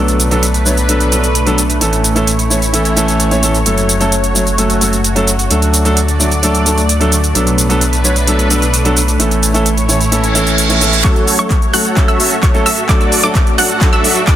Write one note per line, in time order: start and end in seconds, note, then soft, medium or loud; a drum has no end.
0.00 1.79 B1 medium
0.00 0.28 F#3 medium
0.00 5.47 A3 medium
0.00 0.29 B3 medium
0.00 0.29 D4 medium
0.00 1.80 D4 medium
0.00 0.29 A4 medium
0.00 1.80 B4 medium
0.08 closed hi-hat soft
0.08 shaker soft
0.20 closed hi-hat medium
0.20 shaker medium
0.31 0.43 F#3 medium
0.31 0.43 B3 medium
0.31 0.44 D4 medium
0.31 0.44 A4 medium
0.31 closed hi-hat soft
0.31 shaker soft
0.43 closed hi-hat medium
0.43 shaker soft
0.54 closed hi-hat soft
0.54 shaker soft
0.65 0.73 F#3 medium
0.65 0.73 B3 medium
0.65 0.74 D4 medium
0.65 0.74 C#5 medium
0.65 shaker medium
0.77 closed hi-hat soft
0.77 shaker soft
0.88 1.09 F#3 medium
0.88 1.09 B3 medium
0.88 1.09 D4 medium
0.88 1.10 A4 medium
0.88 closed hi-hat medium
0.88 shaker soft
1.00 closed hi-hat soft
1.00 shaker soft
1.12 1.24 F#3 medium
1.12 1.24 B3 medium
1.12 1.24 D4 medium
1.12 1.25 A4 medium
1.12 closed hi-hat medium
1.12 shaker medium
1.24 closed hi-hat soft
1.24 shaker soft
1.35 closed hi-hat medium
1.35 shaker soft
1.46 1.59 F#3 medium
1.46 1.59 B3 medium
1.46 1.59 D4 medium
1.46 1.59 A4 medium
1.46 closed hi-hat soft
1.46 shaker soft
1.58 closed hi-hat medium
1.58 shaker medium
1.70 closed hi-hat soft
1.70 shaker soft
1.81 3.64 A1 medium
1.81 2.13 E3 medium
1.81 2.13 A3 medium
1.81 2.13 C#4 medium
1.81 3.64 E4 medium
1.81 2.13 A4 medium
1.81 5.47 C#5 medium
1.81 closed hi-hat medium
1.81 shaker soft
1.93 closed hi-hat soft
1.93 shaker soft
2.04 closed hi-hat medium
2.04 shaker medium
2.15 2.28 E3 medium
2.15 2.28 A3 medium
2.15 2.28 C#4 medium
2.15 2.28 A4 loud
2.15 closed hi-hat soft
2.15 shaker soft
2.27 closed hi-hat medium
2.27 shaker soft
2.39 closed hi-hat soft
2.39 shaker soft
2.50 2.58 E3 medium
2.50 2.58 A3 medium
2.50 2.58 C#4 medium
2.50 2.58 C#5 medium
2.50 shaker medium
2.62 closed hi-hat soft
2.62 shaker soft
2.73 2.94 E3 medium
2.73 2.94 A3 medium
2.73 2.94 C#4 medium
2.73 2.94 A4 medium
2.73 closed hi-hat medium
2.73 shaker soft
2.85 closed hi-hat soft
2.85 shaker soft
2.96 3.28 E3 medium
2.96 3.28 A3 medium
2.96 3.29 C#4 medium
2.96 3.29 A4 medium
2.96 closed hi-hat medium
2.96 shaker medium
3.08 closed hi-hat soft
3.08 shaker soft
3.20 closed hi-hat medium
3.20 shaker soft
3.31 3.41 E3 medium
3.31 3.41 A3 medium
3.31 3.41 C#4 medium
3.31 3.41 C#5 medium
3.31 closed hi-hat soft
3.31 shaker soft
3.42 3.55 E3 medium
3.42 3.55 A3 medium
3.42 3.55 C#4 medium
3.42 3.55 A4 medium
3.42 closed hi-hat medium
3.42 shaker medium
3.54 closed hi-hat soft
3.54 shaker soft
3.65 5.48 F#1 medium
3.65 3.98 F#3 medium
3.65 3.98 A3 medium
3.65 3.98 C#4 medium
3.65 7.32 F#4 medium
3.65 3.98 A4 medium
3.65 closed hi-hat medium
3.65 shaker soft
3.78 closed hi-hat soft
3.78 shaker soft
3.89 closed hi-hat medium
3.89 shaker medium
4.00 4.12 F#3 medium
4.00 4.13 A3 medium
4.00 4.13 C#4 medium
4.00 4.13 A4 medium
4.00 closed hi-hat soft
4.00 shaker soft
4.12 closed hi-hat medium
4.12 shaker soft
4.24 closed hi-hat soft
4.24 shaker soft
4.35 4.43 F#3 medium
4.35 4.43 A3 medium
4.35 4.43 C#4 medium
4.35 4.43 C#5 medium
4.35 shaker medium
4.47 closed hi-hat soft
4.47 shaker soft
4.58 4.78 F#3 medium
4.58 4.78 A3 medium
4.58 4.79 C#4 medium
4.58 4.79 A4 medium
4.58 closed hi-hat medium
4.58 shaker soft
4.70 closed hi-hat soft
4.70 shaker soft
4.81 4.93 F#3 medium
4.81 4.93 A3 medium
4.81 4.94 C#4 medium
4.81 4.94 A4 medium
4.81 closed hi-hat medium
4.81 shaker medium
4.93 closed hi-hat soft
4.93 shaker soft
5.04 closed hi-hat medium
5.04 shaker soft
5.15 5.28 F#3 medium
5.15 5.28 A3 medium
5.15 5.28 C#4 medium
5.15 5.28 A4 loud
5.15 closed hi-hat soft
5.15 shaker soft
5.28 closed hi-hat medium
5.28 shaker medium
5.39 closed hi-hat soft
5.39 shaker soft
5.50 7.33 D2 medium
5.50 5.82 F#3 medium
5.50 5.82 A3 medium
5.50 11.00 A3 medium
5.50 5.83 D4 medium
5.50 5.83 A4 medium
5.50 7.33 D5 medium
5.50 closed hi-hat medium
5.50 shaker soft
5.62 closed hi-hat soft
5.62 shaker soft
5.74 closed hi-hat medium
5.74 shaker medium
5.85 5.97 F#3 medium
5.85 5.97 A3 medium
5.85 5.98 D4 medium
5.85 5.98 A4 medium
5.85 closed hi-hat soft
5.85 shaker soft
5.97 closed hi-hat medium
5.97 shaker soft
6.08 closed hi-hat soft
6.08 shaker soft
6.19 6.27 F#3 medium
6.19 6.27 A3 medium
6.19 6.28 D4 medium
6.19 6.28 D5 medium
6.19 shaker medium
6.31 closed hi-hat soft
6.31 shaker soft
6.42 6.63 F#3 medium
6.42 6.63 A3 medium
6.42 6.63 D4 medium
6.42 6.64 A4 medium
6.42 closed hi-hat medium
6.42 shaker soft
6.55 closed hi-hat soft
6.55 shaker soft
6.65 6.78 F#3 medium
6.65 6.78 A3 medium
6.65 6.78 D4 medium
6.65 6.79 A4 medium
6.65 closed hi-hat medium
6.65 shaker medium
6.78 closed hi-hat soft
6.78 shaker soft
6.89 closed hi-hat medium
6.89 shaker soft
7.00 7.13 F#3 medium
7.00 7.13 A3 medium
7.00 7.13 D4 medium
7.00 7.13 A4 medium
7.00 closed hi-hat soft
7.00 shaker soft
7.12 closed hi-hat medium
7.12 shaker medium
7.24 closed hi-hat soft
7.24 shaker soft
7.35 9.17 B1 medium
7.35 7.67 F#3 medium
7.35 7.67 B3 medium
7.35 9.18 D4 medium
7.35 7.67 D4 medium
7.35 7.67 A4 medium
7.35 9.18 B4 medium
7.35 closed hi-hat medium
7.35 shaker soft
7.47 closed hi-hat soft
7.47 shaker soft
7.58 closed hi-hat medium
7.58 shaker medium
7.69 7.82 F#3 medium
7.69 7.82 B3 medium
7.69 7.82 D4 medium
7.69 7.82 A4 loud
7.69 closed hi-hat soft
7.69 shaker soft
7.81 closed hi-hat medium
7.81 shaker soft
7.93 closed hi-hat soft
7.93 shaker soft
8.04 8.12 F#3 medium
8.04 8.12 B3 medium
8.04 8.12 D4 medium
8.04 8.12 C#5 medium
8.04 shaker medium
8.16 closed hi-hat soft
8.16 shaker soft
8.27 8.48 F#3 medium
8.27 8.48 B3 medium
8.27 8.48 D4 medium
8.27 8.48 A4 medium
8.27 closed hi-hat medium
8.27 shaker soft
8.39 closed hi-hat soft
8.39 shaker soft
8.50 8.63 F#3 medium
8.50 8.63 B3 medium
8.50 8.63 D4 medium
8.50 8.63 A4 medium
8.50 closed hi-hat medium
8.50 shaker medium
8.62 closed hi-hat soft
8.62 shaker soft
8.74 closed hi-hat medium
8.74 shaker soft
8.85 8.97 F#3 medium
8.85 8.97 B3 medium
8.85 8.98 D4 medium
8.85 8.98 A4 loud
8.85 closed hi-hat soft
8.85 shaker soft
8.97 closed hi-hat medium
8.97 shaker medium
9.08 closed hi-hat soft
9.08 shaker soft
9.19 11.02 A1 medium
9.19 9.51 E3 medium
9.19 9.52 A3 medium
9.19 9.52 C#4 medium
9.19 11.03 E4 medium
9.19 9.52 A4 medium
9.19 11.03 C#5 medium
9.19 closed hi-hat medium
9.19 shaker soft
9.31 closed hi-hat soft
9.31 shaker soft
9.43 closed hi-hat medium
9.43 shaker medium
9.54 9.66 E3 medium
9.54 9.67 A3 medium
9.54 9.67 C#4 medium
9.54 9.67 A4 medium
9.54 closed hi-hat soft
9.54 shaker soft
9.66 closed hi-hat medium
9.66 shaker soft
9.77 closed hi-hat soft
9.77 shaker soft
9.88 9.96 E3 medium
9.88 9.97 A3 medium
9.88 9.97 C#4 medium
9.88 9.97 C#5 medium
9.88 closed hi-hat soft
9.88 shaker medium
10.01 closed hi-hat soft
10.01 shaker soft
10.11 10.32 E3 medium
10.11 10.32 A3 medium
10.11 10.33 C#4 medium
10.11 10.33 A4 medium
10.11 closed hi-hat medium
10.11 reverse cymbal medium
10.11 shaker soft
10.24 closed hi-hat soft
10.24 shaker soft
10.35 10.67 E3 medium
10.35 10.67 A3 medium
10.35 10.67 C#4 medium
10.35 10.67 A4 medium
10.35 closed hi-hat medium
10.35 shaker medium
10.47 closed hi-hat soft
10.47 shaker soft
10.58 closed hi-hat medium
10.58 shaker soft
10.69 10.79 E3 medium
10.69 10.79 A3 medium
10.69 10.80 C#4 medium
10.69 10.80 C#5 medium
10.69 closed hi-hat soft
10.69 shaker soft
10.81 10.93 E3 medium
10.81 10.93 A3 medium
10.81 10.94 C#4 medium
10.81 10.94 A4 medium
10.81 closed hi-hat medium
10.81 shaker medium
10.93 closed hi-hat soft
10.93 shaker soft
11.04 11.36 F#3 medium
11.04 11.36 A3 medium
11.04 14.36 A3 medium
11.04 11.36 C#4 medium
11.04 12.87 F#4 medium
11.04 11.36 F#4 medium
11.04 11.36 A4 medium
11.04 11.37 A4 medium
11.04 12.87 C#5 medium
11.04 11.36 C#5 loud
11.04 11.36 C#6 loud
11.04 kick loud
11.04 cross-stick medium
11.04 clap soft
11.04 closed hi-hat loud
11.04 riser medium
11.04 shaker soft
11.16 closed hi-hat soft
11.16 shaker soft
11.28 open hi-hat loud
11.28 shaker medium
11.38 11.51 F#3 medium
11.38 11.51 A3 medium
11.38 11.51 C#4 medium
11.38 11.57 F#4 medium
11.38 11.52 A4 loud
11.38 11.57 C#6 loud
11.38 closed hi-hat soft
11.38 shaker soft
11.51 kick loud
11.51 clap soft
11.51 closed hi-hat medium
11.51 shaker soft
11.62 closed hi-hat soft
11.62 shaker soft
11.73 11.81 F#3 medium
11.73 11.81 A3 medium
11.73 11.81 C#4 medium
11.73 12.05 F#4 loud
11.73 12.05 A4 medium
11.73 11.82 C#5 medium
11.73 12.05 F#5 loud
11.73 12.05 F#6 loud
11.73 open hi-hat loud
11.73 shaker medium
11.85 closed hi-hat soft
11.85 shaker soft
11.96 12.17 F#3 medium
11.96 12.17 A3 medium
11.96 12.17 C#4 medium
11.96 12.17 A4 medium
11.96 kick loud
11.96 clap medium
11.96 closed hi-hat medium
11.96 shaker soft
12.08 12.36 F#4 medium
12.08 12.36 A4 medium
12.08 12.36 E5 loud
12.08 12.36 E6 loud
12.08 closed hi-hat soft
12.08 shaker soft
12.19 12.32 F#3 medium
12.19 12.32 A3 medium
12.19 12.32 C#4 medium
12.19 12.32 A4 medium
12.19 open hi-hat loud
12.19 shaker medium
12.31 closed hi-hat soft
12.31 shaker soft
12.43 12.60 F#4 medium
12.43 12.60 A4 medium
12.43 12.60 C#5 medium
12.43 12.60 C#6 medium
12.43 kick loud
12.43 clap medium
12.43 closed hi-hat medium
12.43 shaker soft
12.54 12.66 F#3 medium
12.54 12.66 A3 medium
12.54 12.67 C#4 medium
12.54 12.67 A4 loud
12.54 closed hi-hat soft
12.54 shaker soft
12.66 12.84 F#4 loud
12.66 12.83 A4 medium
12.66 12.83 E5 loud
12.66 12.84 E6 loud
12.66 open hi-hat loud
12.66 shaker medium
12.78 closed hi-hat soft
12.78 shaker soft
12.88 13.21 F#3 medium
12.88 13.21 A3 medium
12.88 13.21 D4 medium
12.88 13.21 F#4 medium
12.88 14.36 F#4 medium
12.88 13.21 A4 medium
12.88 13.21 D5 loud
12.88 14.36 D5 medium
12.88 13.21 D6 loud
12.88 kick loud
12.88 cross-stick medium
12.88 clap medium
12.88 closed hi-hat medium
12.88 shaker soft
13.01 closed hi-hat soft
13.01 shaker soft
13.12 open hi-hat loud
13.12 shaker medium
13.23 13.36 F#3 medium
13.23 13.36 A3 medium
13.23 13.36 D4 medium
13.23 13.41 F#4 medium
13.23 13.41 A4 medium
13.23 13.36 A4 loud
13.23 13.41 D5 loud
13.23 13.41 D6 loud
13.23 closed hi-hat soft
13.23 shaker soft
13.35 kick loud
13.35 clap medium
13.35 closed hi-hat medium
13.35 shaker soft
13.47 closed hi-hat soft
13.47 shaker soft
13.58 13.66 F#3 medium
13.58 13.66 A3 medium
13.58 13.66 D4 medium
13.58 13.90 F#4 loud
13.58 13.90 A4 medium
13.58 13.66 D5 medium
13.58 13.90 F#5 loud
13.58 13.90 F#6 loud
13.58 open hi-hat loud
13.58 shaker medium
13.70 closed hi-hat soft
13.70 shaker soft
13.81 14.01 F#3 medium
13.81 14.02 A3 medium
13.81 14.02 D4 medium
13.81 14.02 A4 medium
13.81 kick loud
13.81 clap medium
13.81 closed hi-hat medium
13.81 shaker soft
13.93 14.21 F#4 loud
13.93 14.21 A4 medium
13.93 14.21 E5 loud
13.93 14.21 E6 loud
13.93 closed hi-hat soft
13.93 shaker soft
14.04 14.16 F#3 medium
14.04 14.17 A3 medium
14.04 14.17 D4 medium
14.04 14.17 A4 medium
14.04 open hi-hat loud
14.04 shaker medium
14.16 closed hi-hat soft
14.16 shaker soft
14.27 14.36 F#4 medium
14.27 14.36 A4 medium
14.27 14.36 D5 medium
14.27 14.36 D6 medium
14.27 kick loud
14.27 clap medium
14.27 closed hi-hat medium
14.27 shaker soft